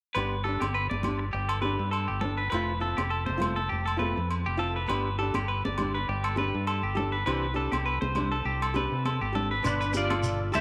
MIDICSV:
0, 0, Header, 1, 9, 480
1, 0, Start_track
1, 0, Tempo, 592885
1, 122, Time_signature, 4, 2, 24, 8
1, 8587, End_track
2, 0, Start_track
2, 0, Title_t, "Clean electric guitar"
2, 0, Program_c, 0, 27
2, 118, Note_on_c, 0, 71, 67
2, 347, Note_off_c, 0, 71, 0
2, 355, Note_on_c, 0, 69, 67
2, 483, Note_off_c, 0, 69, 0
2, 488, Note_on_c, 0, 67, 57
2, 593, Note_off_c, 0, 67, 0
2, 602, Note_on_c, 0, 71, 69
2, 722, Note_off_c, 0, 71, 0
2, 725, Note_on_c, 0, 74, 53
2, 956, Note_off_c, 0, 74, 0
2, 1076, Note_on_c, 0, 67, 68
2, 1203, Note_off_c, 0, 67, 0
2, 1203, Note_on_c, 0, 69, 59
2, 1307, Note_off_c, 0, 69, 0
2, 1311, Note_on_c, 0, 71, 59
2, 1543, Note_off_c, 0, 71, 0
2, 1549, Note_on_c, 0, 69, 55
2, 1679, Note_off_c, 0, 69, 0
2, 1683, Note_on_c, 0, 67, 55
2, 1789, Note_off_c, 0, 67, 0
2, 1789, Note_on_c, 0, 69, 64
2, 1919, Note_off_c, 0, 69, 0
2, 1923, Note_on_c, 0, 71, 52
2, 2014, Note_off_c, 0, 71, 0
2, 2024, Note_on_c, 0, 71, 75
2, 2259, Note_off_c, 0, 71, 0
2, 2278, Note_on_c, 0, 69, 69
2, 2403, Note_off_c, 0, 69, 0
2, 2403, Note_on_c, 0, 67, 57
2, 2509, Note_off_c, 0, 67, 0
2, 2513, Note_on_c, 0, 69, 73
2, 2637, Note_off_c, 0, 69, 0
2, 2640, Note_on_c, 0, 72, 55
2, 2873, Note_off_c, 0, 72, 0
2, 2883, Note_on_c, 0, 69, 60
2, 2989, Note_off_c, 0, 69, 0
2, 2989, Note_on_c, 0, 67, 70
2, 3119, Note_off_c, 0, 67, 0
2, 3121, Note_on_c, 0, 69, 64
2, 3227, Note_off_c, 0, 69, 0
2, 3231, Note_on_c, 0, 71, 63
2, 3462, Note_off_c, 0, 71, 0
2, 3611, Note_on_c, 0, 67, 57
2, 3713, Note_off_c, 0, 67, 0
2, 3716, Note_on_c, 0, 69, 69
2, 3842, Note_off_c, 0, 69, 0
2, 3854, Note_on_c, 0, 71, 51
2, 3945, Note_off_c, 0, 71, 0
2, 3955, Note_on_c, 0, 71, 75
2, 4185, Note_off_c, 0, 71, 0
2, 4199, Note_on_c, 0, 69, 71
2, 4324, Note_off_c, 0, 69, 0
2, 4332, Note_on_c, 0, 67, 61
2, 4434, Note_off_c, 0, 67, 0
2, 4438, Note_on_c, 0, 71, 74
2, 4564, Note_off_c, 0, 71, 0
2, 4577, Note_on_c, 0, 74, 57
2, 4802, Note_off_c, 0, 74, 0
2, 4813, Note_on_c, 0, 71, 62
2, 4915, Note_off_c, 0, 71, 0
2, 4929, Note_on_c, 0, 67, 71
2, 5049, Note_off_c, 0, 67, 0
2, 5054, Note_on_c, 0, 69, 62
2, 5155, Note_off_c, 0, 69, 0
2, 5167, Note_on_c, 0, 71, 60
2, 5392, Note_off_c, 0, 71, 0
2, 5403, Note_on_c, 0, 69, 66
2, 5527, Note_off_c, 0, 69, 0
2, 5532, Note_on_c, 0, 67, 59
2, 5635, Note_off_c, 0, 67, 0
2, 5641, Note_on_c, 0, 69, 71
2, 5763, Note_off_c, 0, 69, 0
2, 5766, Note_on_c, 0, 71, 57
2, 5868, Note_off_c, 0, 71, 0
2, 5878, Note_on_c, 0, 71, 73
2, 6107, Note_off_c, 0, 71, 0
2, 6121, Note_on_c, 0, 69, 70
2, 6246, Note_off_c, 0, 69, 0
2, 6247, Note_on_c, 0, 67, 65
2, 6352, Note_off_c, 0, 67, 0
2, 6360, Note_on_c, 0, 71, 75
2, 6482, Note_off_c, 0, 71, 0
2, 6485, Note_on_c, 0, 72, 61
2, 6717, Note_off_c, 0, 72, 0
2, 6732, Note_on_c, 0, 69, 62
2, 6836, Note_off_c, 0, 69, 0
2, 6845, Note_on_c, 0, 67, 70
2, 6969, Note_off_c, 0, 67, 0
2, 6981, Note_on_c, 0, 69, 57
2, 7081, Note_off_c, 0, 69, 0
2, 7093, Note_on_c, 0, 71, 68
2, 7317, Note_off_c, 0, 71, 0
2, 7332, Note_on_c, 0, 69, 65
2, 7453, Note_off_c, 0, 69, 0
2, 7460, Note_on_c, 0, 67, 63
2, 7560, Note_off_c, 0, 67, 0
2, 7570, Note_on_c, 0, 69, 70
2, 7693, Note_off_c, 0, 69, 0
2, 7700, Note_on_c, 0, 71, 59
2, 7801, Note_off_c, 0, 71, 0
2, 7939, Note_on_c, 0, 71, 58
2, 8032, Note_off_c, 0, 71, 0
2, 8180, Note_on_c, 0, 69, 62
2, 8407, Note_off_c, 0, 69, 0
2, 8530, Note_on_c, 0, 69, 69
2, 8587, Note_off_c, 0, 69, 0
2, 8587, End_track
3, 0, Start_track
3, 0, Title_t, "Clean electric guitar"
3, 0, Program_c, 1, 27
3, 7823, Note_on_c, 1, 62, 59
3, 7827, Note_on_c, 1, 71, 61
3, 8039, Note_off_c, 1, 62, 0
3, 8062, Note_off_c, 1, 71, 0
3, 8069, Note_on_c, 1, 65, 61
3, 8073, Note_on_c, 1, 74, 70
3, 8506, Note_off_c, 1, 65, 0
3, 8506, Note_off_c, 1, 74, 0
3, 8542, Note_on_c, 1, 76, 87
3, 8549, Note_on_c, 1, 67, 64
3, 8587, Note_off_c, 1, 67, 0
3, 8587, Note_off_c, 1, 76, 0
3, 8587, End_track
4, 0, Start_track
4, 0, Title_t, "Nylon-string guitar"
4, 0, Program_c, 2, 24
4, 123, Note_on_c, 2, 59, 60
4, 136, Note_on_c, 2, 62, 63
4, 139, Note_on_c, 2, 67, 70
4, 276, Note_off_c, 2, 59, 0
4, 282, Note_off_c, 2, 62, 0
4, 284, Note_off_c, 2, 67, 0
4, 363, Note_on_c, 2, 67, 41
4, 393, Note_on_c, 2, 62, 36
4, 516, Note_off_c, 2, 67, 0
4, 531, Note_off_c, 2, 62, 0
4, 845, Note_on_c, 2, 67, 46
4, 867, Note_on_c, 2, 62, 37
4, 996, Note_off_c, 2, 67, 0
4, 1007, Note_off_c, 2, 62, 0
4, 1307, Note_on_c, 2, 67, 41
4, 1333, Note_on_c, 2, 62, 42
4, 1467, Note_off_c, 2, 67, 0
4, 1480, Note_off_c, 2, 62, 0
4, 1820, Note_on_c, 2, 62, 38
4, 1963, Note_off_c, 2, 62, 0
4, 2033, Note_on_c, 2, 53, 58
4, 2040, Note_on_c, 2, 57, 70
4, 2046, Note_on_c, 2, 60, 71
4, 2058, Note_on_c, 2, 65, 69
4, 2189, Note_off_c, 2, 53, 0
4, 2193, Note_off_c, 2, 57, 0
4, 2196, Note_off_c, 2, 60, 0
4, 2202, Note_off_c, 2, 65, 0
4, 2270, Note_on_c, 2, 65, 41
4, 2278, Note_on_c, 2, 60, 41
4, 2291, Note_on_c, 2, 57, 41
4, 2428, Note_off_c, 2, 65, 0
4, 2432, Note_off_c, 2, 60, 0
4, 2438, Note_off_c, 2, 57, 0
4, 2733, Note_on_c, 2, 65, 52
4, 2743, Note_on_c, 2, 60, 42
4, 2760, Note_on_c, 2, 57, 45
4, 2899, Note_off_c, 2, 65, 0
4, 2904, Note_off_c, 2, 60, 0
4, 2913, Note_off_c, 2, 57, 0
4, 3215, Note_on_c, 2, 65, 47
4, 3229, Note_on_c, 2, 60, 43
4, 3242, Note_on_c, 2, 57, 44
4, 3380, Note_off_c, 2, 65, 0
4, 3387, Note_off_c, 2, 60, 0
4, 3394, Note_off_c, 2, 57, 0
4, 3703, Note_on_c, 2, 65, 50
4, 3718, Note_on_c, 2, 60, 43
4, 3731, Note_on_c, 2, 57, 41
4, 3864, Note_off_c, 2, 65, 0
4, 3872, Note_off_c, 2, 60, 0
4, 3878, Note_off_c, 2, 57, 0
4, 3947, Note_on_c, 2, 59, 66
4, 3959, Note_on_c, 2, 62, 69
4, 3961, Note_on_c, 2, 67, 70
4, 4106, Note_off_c, 2, 59, 0
4, 4112, Note_off_c, 2, 62, 0
4, 4113, Note_off_c, 2, 67, 0
4, 4198, Note_on_c, 2, 67, 53
4, 4227, Note_on_c, 2, 62, 37
4, 4352, Note_off_c, 2, 67, 0
4, 4366, Note_off_c, 2, 62, 0
4, 4680, Note_on_c, 2, 67, 53
4, 4702, Note_on_c, 2, 62, 44
4, 4833, Note_off_c, 2, 67, 0
4, 4844, Note_off_c, 2, 62, 0
4, 5149, Note_on_c, 2, 67, 47
4, 5174, Note_on_c, 2, 62, 43
4, 5308, Note_off_c, 2, 67, 0
4, 5320, Note_off_c, 2, 62, 0
4, 5627, Note_on_c, 2, 67, 47
4, 5653, Note_on_c, 2, 62, 41
4, 5787, Note_off_c, 2, 67, 0
4, 5800, Note_off_c, 2, 62, 0
4, 5877, Note_on_c, 2, 60, 64
4, 5879, Note_on_c, 2, 52, 67
4, 5887, Note_on_c, 2, 62, 64
4, 5895, Note_on_c, 2, 67, 64
4, 6032, Note_off_c, 2, 60, 0
4, 6033, Note_off_c, 2, 52, 0
4, 6037, Note_off_c, 2, 62, 0
4, 6041, Note_off_c, 2, 67, 0
4, 6105, Note_on_c, 2, 67, 50
4, 6113, Note_on_c, 2, 62, 46
4, 6127, Note_on_c, 2, 60, 39
4, 6267, Note_off_c, 2, 67, 0
4, 6270, Note_off_c, 2, 62, 0
4, 6277, Note_off_c, 2, 60, 0
4, 6610, Note_on_c, 2, 67, 50
4, 6618, Note_on_c, 2, 62, 52
4, 6630, Note_on_c, 2, 60, 41
4, 6759, Note_off_c, 2, 67, 0
4, 6764, Note_off_c, 2, 62, 0
4, 6770, Note_off_c, 2, 60, 0
4, 7076, Note_on_c, 2, 67, 52
4, 7089, Note_on_c, 2, 62, 48
4, 7096, Note_on_c, 2, 60, 40
4, 7233, Note_off_c, 2, 67, 0
4, 7240, Note_off_c, 2, 62, 0
4, 7243, Note_off_c, 2, 60, 0
4, 7550, Note_on_c, 2, 67, 47
4, 7569, Note_on_c, 2, 62, 45
4, 7574, Note_on_c, 2, 60, 44
4, 7711, Note_off_c, 2, 67, 0
4, 7720, Note_off_c, 2, 62, 0
4, 7723, Note_off_c, 2, 60, 0
4, 7794, Note_on_c, 2, 59, 61
4, 7802, Note_on_c, 2, 62, 63
4, 7953, Note_off_c, 2, 59, 0
4, 7957, Note_off_c, 2, 62, 0
4, 8050, Note_on_c, 2, 67, 50
4, 8075, Note_on_c, 2, 62, 39
4, 8201, Note_off_c, 2, 67, 0
4, 8214, Note_off_c, 2, 62, 0
4, 8515, Note_on_c, 2, 67, 48
4, 8545, Note_on_c, 2, 62, 39
4, 8587, Note_off_c, 2, 62, 0
4, 8587, Note_off_c, 2, 67, 0
4, 8587, End_track
5, 0, Start_track
5, 0, Title_t, "Fingered electric bass"
5, 0, Program_c, 3, 33
5, 129, Note_on_c, 3, 31, 78
5, 465, Note_off_c, 3, 31, 0
5, 493, Note_on_c, 3, 31, 62
5, 712, Note_off_c, 3, 31, 0
5, 737, Note_on_c, 3, 31, 78
5, 1052, Note_off_c, 3, 31, 0
5, 1085, Note_on_c, 3, 31, 84
5, 1422, Note_off_c, 3, 31, 0
5, 1451, Note_on_c, 3, 43, 68
5, 1670, Note_off_c, 3, 43, 0
5, 1695, Note_on_c, 3, 31, 62
5, 2011, Note_off_c, 3, 31, 0
5, 2044, Note_on_c, 3, 29, 77
5, 2381, Note_off_c, 3, 29, 0
5, 2413, Note_on_c, 3, 29, 62
5, 2631, Note_off_c, 3, 29, 0
5, 2666, Note_on_c, 3, 29, 75
5, 2976, Note_off_c, 3, 29, 0
5, 3008, Note_on_c, 3, 29, 80
5, 3343, Note_off_c, 3, 29, 0
5, 3378, Note_on_c, 3, 41, 71
5, 3593, Note_off_c, 3, 41, 0
5, 3619, Note_on_c, 3, 29, 68
5, 3932, Note_off_c, 3, 29, 0
5, 3964, Note_on_c, 3, 31, 82
5, 4301, Note_off_c, 3, 31, 0
5, 4325, Note_on_c, 3, 31, 64
5, 4547, Note_off_c, 3, 31, 0
5, 4581, Note_on_c, 3, 31, 75
5, 4894, Note_off_c, 3, 31, 0
5, 4929, Note_on_c, 3, 31, 85
5, 5264, Note_off_c, 3, 31, 0
5, 5298, Note_on_c, 3, 43, 73
5, 5514, Note_off_c, 3, 43, 0
5, 5530, Note_on_c, 3, 31, 70
5, 5849, Note_off_c, 3, 31, 0
5, 5888, Note_on_c, 3, 36, 84
5, 6224, Note_off_c, 3, 36, 0
5, 6251, Note_on_c, 3, 36, 70
5, 6471, Note_off_c, 3, 36, 0
5, 6491, Note_on_c, 3, 36, 79
5, 6810, Note_off_c, 3, 36, 0
5, 6842, Note_on_c, 3, 36, 81
5, 7182, Note_off_c, 3, 36, 0
5, 7219, Note_on_c, 3, 48, 69
5, 7436, Note_off_c, 3, 48, 0
5, 7457, Note_on_c, 3, 32, 66
5, 7775, Note_off_c, 3, 32, 0
5, 7817, Note_on_c, 3, 31, 83
5, 8500, Note_off_c, 3, 31, 0
5, 8541, Note_on_c, 3, 38, 71
5, 8587, Note_off_c, 3, 38, 0
5, 8587, End_track
6, 0, Start_track
6, 0, Title_t, "Muted clean electric guitar strokes"
6, 966, Note_on_c, 9, 29, 59
6, 1047, Note_off_c, 9, 29, 0
6, 7805, Note_on_c, 9, 29, 75
6, 7886, Note_off_c, 9, 29, 0
6, 8042, Note_on_c, 9, 29, 73
6, 8123, Note_off_c, 9, 29, 0
6, 8587, End_track
7, 0, Start_track
7, 0, Title_t, "Muted nylon-string guitar strokes"
7, 7805, Note_on_c, 9, 29, 74
7, 7886, Note_off_c, 9, 29, 0
7, 8587, End_track
8, 0, Start_track
8, 0, Title_t, "Shekere"
8, 7812, Note_on_c, 9, 82, 75
8, 7893, Note_off_c, 9, 82, 0
8, 7943, Note_on_c, 9, 82, 23
8, 8024, Note_off_c, 9, 82, 0
8, 8043, Note_on_c, 9, 82, 63
8, 8124, Note_off_c, 9, 82, 0
8, 8284, Note_on_c, 9, 82, 75
8, 8365, Note_off_c, 9, 82, 0
8, 8528, Note_on_c, 9, 82, 59
8, 8587, Note_off_c, 9, 82, 0
8, 8587, End_track
9, 0, Start_track
9, 0, Title_t, "Drums"
9, 124, Note_on_c, 9, 68, 57
9, 205, Note_off_c, 9, 68, 0
9, 496, Note_on_c, 9, 63, 53
9, 500, Note_on_c, 9, 68, 61
9, 577, Note_off_c, 9, 63, 0
9, 581, Note_off_c, 9, 68, 0
9, 736, Note_on_c, 9, 63, 54
9, 817, Note_off_c, 9, 63, 0
9, 836, Note_on_c, 9, 63, 50
9, 836, Note_on_c, 9, 64, 57
9, 843, Note_on_c, 9, 68, 55
9, 917, Note_off_c, 9, 63, 0
9, 917, Note_off_c, 9, 64, 0
9, 924, Note_off_c, 9, 68, 0
9, 1208, Note_on_c, 9, 68, 65
9, 1289, Note_off_c, 9, 68, 0
9, 1312, Note_on_c, 9, 63, 59
9, 1393, Note_off_c, 9, 63, 0
9, 1563, Note_on_c, 9, 68, 50
9, 1644, Note_off_c, 9, 68, 0
9, 1791, Note_on_c, 9, 64, 55
9, 1872, Note_off_c, 9, 64, 0
9, 2040, Note_on_c, 9, 68, 56
9, 2121, Note_off_c, 9, 68, 0
9, 2412, Note_on_c, 9, 63, 58
9, 2414, Note_on_c, 9, 68, 55
9, 2493, Note_off_c, 9, 63, 0
9, 2494, Note_off_c, 9, 68, 0
9, 2643, Note_on_c, 9, 63, 52
9, 2724, Note_off_c, 9, 63, 0
9, 2753, Note_on_c, 9, 63, 55
9, 2753, Note_on_c, 9, 64, 61
9, 2766, Note_on_c, 9, 68, 61
9, 2834, Note_off_c, 9, 63, 0
9, 2834, Note_off_c, 9, 64, 0
9, 2847, Note_off_c, 9, 68, 0
9, 3137, Note_on_c, 9, 68, 57
9, 3218, Note_off_c, 9, 68, 0
9, 3234, Note_on_c, 9, 63, 59
9, 3315, Note_off_c, 9, 63, 0
9, 3486, Note_on_c, 9, 68, 52
9, 3567, Note_off_c, 9, 68, 0
9, 3964, Note_on_c, 9, 68, 59
9, 4045, Note_off_c, 9, 68, 0
9, 4325, Note_on_c, 9, 63, 62
9, 4329, Note_on_c, 9, 68, 57
9, 4406, Note_off_c, 9, 63, 0
9, 4410, Note_off_c, 9, 68, 0
9, 4574, Note_on_c, 9, 63, 62
9, 4655, Note_off_c, 9, 63, 0
9, 4677, Note_on_c, 9, 68, 59
9, 4685, Note_on_c, 9, 63, 56
9, 4685, Note_on_c, 9, 64, 57
9, 4758, Note_off_c, 9, 68, 0
9, 4766, Note_off_c, 9, 63, 0
9, 4766, Note_off_c, 9, 64, 0
9, 5052, Note_on_c, 9, 68, 64
9, 5133, Note_off_c, 9, 68, 0
9, 5160, Note_on_c, 9, 63, 60
9, 5241, Note_off_c, 9, 63, 0
9, 5402, Note_on_c, 9, 68, 57
9, 5483, Note_off_c, 9, 68, 0
9, 5644, Note_on_c, 9, 64, 67
9, 5725, Note_off_c, 9, 64, 0
9, 5888, Note_on_c, 9, 68, 58
9, 5969, Note_off_c, 9, 68, 0
9, 6253, Note_on_c, 9, 63, 66
9, 6260, Note_on_c, 9, 68, 63
9, 6334, Note_off_c, 9, 63, 0
9, 6341, Note_off_c, 9, 68, 0
9, 6492, Note_on_c, 9, 63, 60
9, 6572, Note_off_c, 9, 63, 0
9, 6600, Note_on_c, 9, 63, 62
9, 6600, Note_on_c, 9, 64, 65
9, 6604, Note_on_c, 9, 68, 55
9, 6681, Note_off_c, 9, 63, 0
9, 6681, Note_off_c, 9, 64, 0
9, 6685, Note_off_c, 9, 68, 0
9, 6981, Note_on_c, 9, 68, 63
9, 7062, Note_off_c, 9, 68, 0
9, 7089, Note_on_c, 9, 63, 64
9, 7170, Note_off_c, 9, 63, 0
9, 7329, Note_on_c, 9, 63, 64
9, 7332, Note_on_c, 9, 68, 53
9, 7410, Note_off_c, 9, 63, 0
9, 7413, Note_off_c, 9, 68, 0
9, 7572, Note_on_c, 9, 64, 63
9, 7653, Note_off_c, 9, 64, 0
9, 7809, Note_on_c, 9, 68, 62
9, 7889, Note_off_c, 9, 68, 0
9, 8045, Note_on_c, 9, 63, 66
9, 8126, Note_off_c, 9, 63, 0
9, 8180, Note_on_c, 9, 63, 67
9, 8182, Note_on_c, 9, 68, 60
9, 8261, Note_off_c, 9, 63, 0
9, 8263, Note_off_c, 9, 68, 0
9, 8532, Note_on_c, 9, 68, 58
9, 8539, Note_on_c, 9, 64, 64
9, 8587, Note_off_c, 9, 64, 0
9, 8587, Note_off_c, 9, 68, 0
9, 8587, End_track
0, 0, End_of_file